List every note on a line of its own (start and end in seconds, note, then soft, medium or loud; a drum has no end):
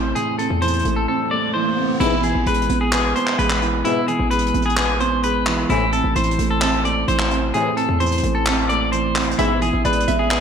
0.00 0.14 A1 loud
0.00 0.15 A2 medium
0.00 0.38 C3 medium
0.00 0.62 E3 medium
0.00 0.85 A3 medium
0.00 0.39 C4 loud
0.00 0.13 C5 medium
0.15 1.31 A2 loud
0.15 0.36 G#4 loud
0.15 closed hi-hat medium
0.15 riser medium
0.38 1.54 C3 medium
0.38 0.59 A4 medium
0.38 closed hi-hat medium
0.50 0.84 E2 loud
0.62 1.53 E3 medium
0.62 0.94 C5 medium
0.62 closed hi-hat medium
0.68 closed hi-hat medium
0.73 closed hi-hat medium
0.79 closed hi-hat medium
0.85 1.07 A1 loud
0.85 1.30 A3 medium
0.85 closed hi-hat medium
0.96 1.07 A4 medium
1.08 2.00 C4 loud
1.08 1.29 A4 medium
1.31 2.00 A3 medium
1.31 1.52 D5 medium
1.54 2.00 E3 medium
1.54 1.97 C5 medium
1.77 2.00 C3 medium
2.00 2.34 A1 loud
2.00 2.15 G#2 loud
2.00 2.15 B2 medium
2.00 3.16 B2 loud
2.00 2.15 E3 loud
2.00 2.21 E4 loud
2.00 crash loud
2.23 3.38 E3 medium
2.23 2.44 G#4 medium
2.23 closed hi-hat medium
2.35 2.46 A1 loud
2.46 2.69 A1 loud
2.46 3.37 G#3 medium
2.46 2.79 B4 medium
2.46 closed hi-hat medium
2.54 closed hi-hat medium
2.62 closed hi-hat medium
2.69 3.14 A1 loud
2.69 3.14 B3 medium
2.69 closed hi-hat medium
2.81 2.91 G#4 medium
2.92 3.13 G#4 medium
2.92 4.08 B4 loud
2.92 clap loud
2.92 closed hi-hat medium
3.16 4.31 B3 medium
3.16 3.36 C5 medium
3.16 closed hi-hat medium
3.27 clap medium
3.39 3.83 A1 loud
3.39 4.30 G#3 medium
3.39 3.82 B4 medium
3.39 closed hi-hat medium
3.50 clap loud
3.62 4.06 E3 medium
3.62 closed hi-hat medium
3.85 4.00 G#2 medium
3.85 4.00 B2 loud
3.85 5.00 B2 loud
3.85 4.00 E3 loud
3.85 4.05 E4 loud
3.85 closed hi-hat medium
4.08 5.23 E3 medium
4.08 4.29 G#4 medium
4.08 closed hi-hat medium
4.19 4.53 A1 loud
4.31 5.22 G#3 medium
4.31 4.63 B4 medium
4.31 closed hi-hat medium
4.39 closed hi-hat medium
4.46 closed hi-hat medium
4.54 5.66 A1 loud
4.54 4.99 B3 medium
4.54 closed hi-hat medium
4.62 4.76 G#4 medium
4.62 closed hi-hat medium
4.70 closed hi-hat soft
4.77 4.98 G#4 medium
4.77 5.70 B4 loud
4.77 clap loud
4.77 closed hi-hat medium
5.00 5.70 B3 medium
5.00 5.21 C5 medium
5.00 closed hi-hat medium
5.23 5.70 G#3 medium
5.23 5.67 B4 medium
5.23 closed hi-hat medium
5.46 5.70 E3 medium
5.46 clap loud
5.46 closed hi-hat medium
5.69 6.03 A1 loud
5.69 5.84 A2 loud
5.69 6.85 A2 medium
5.69 5.84 C3 loud
5.69 5.84 E3 loud
5.69 5.90 E4 loud
5.69 closed hi-hat medium
5.93 7.08 C3 medium
5.93 6.13 A4 medium
5.93 closed hi-hat medium
6.04 6.15 A1 loud
6.16 6.38 A1 loud
6.16 7.07 E3 medium
6.16 6.48 C5 medium
6.16 closed hi-hat medium
6.23 closed hi-hat medium
6.31 closed hi-hat medium
6.39 7.05 A1 loud
6.39 6.83 A3 medium
6.39 closed hi-hat medium
6.50 6.61 A4 medium
6.62 7.77 C4 loud
6.62 6.83 A4 medium
6.62 clap loud
6.62 closed hi-hat medium
6.84 8.00 A3 medium
6.84 7.06 D5 medium
6.84 closed hi-hat medium
7.08 7.52 A1 loud
7.08 7.99 E3 medium
7.08 7.51 C5 loud
7.08 closed hi-hat medium
7.19 clap loud
7.31 7.75 C3 medium
7.31 closed hi-hat medium
7.54 8.69 A2 loud
7.54 7.69 A2 loud
7.54 7.69 C3 loud
7.54 7.69 E3 loud
7.54 7.75 G#4 loud
7.54 closed hi-hat medium
7.76 8.92 C3 medium
7.76 7.98 A4 medium
7.76 closed hi-hat medium
7.89 8.22 E2 loud
8.00 8.91 E3 medium
8.00 8.33 C5 medium
8.00 closed hi-hat medium
8.06 closed hi-hat medium
8.12 closed hi-hat medium
8.18 closed hi-hat medium
8.23 9.35 A1 loud
8.23 8.68 A3 medium
8.23 closed hi-hat medium
8.35 8.45 A4 medium
8.46 9.39 C4 medium
8.46 8.67 A4 medium
8.46 clap loud
8.46 closed hi-hat medium
8.69 9.39 A3 medium
8.69 8.90 D5 medium
8.69 closed hi-hat medium
8.92 9.39 E3 medium
8.92 9.36 C5 medium
8.92 closed hi-hat medium
9.15 9.39 C3 medium
9.15 clap loud
9.15 closed hi-hat soft
9.15 open hi-hat medium
9.23 closed hi-hat medium
9.31 closed hi-hat medium
9.39 9.72 A1 loud
9.39 9.53 G#2 loud
9.39 9.53 B2 medium
9.39 10.40 B2 medium
9.39 9.53 E3 loud
9.39 9.59 E4 loud
9.39 9.82 E5 loud
9.39 closed hi-hat medium
9.61 10.40 E3 medium
9.61 9.83 G#4 medium
9.61 closed hi-hat medium
9.73 9.84 A1 loud
9.85 10.07 A1 loud
9.85 10.40 G#3 medium
9.85 10.18 B4 medium
9.85 10.07 D5 medium
9.85 closed hi-hat medium
9.93 closed hi-hat medium
10.00 closed hi-hat medium
10.08 10.40 A1 loud
10.08 10.40 B3 loud
10.08 10.40 E5 loud
10.08 closed hi-hat medium
10.19 10.30 G#4 medium
10.31 10.40 G#4 medium
10.31 10.40 B4 loud
10.31 clap loud
10.31 closed hi-hat medium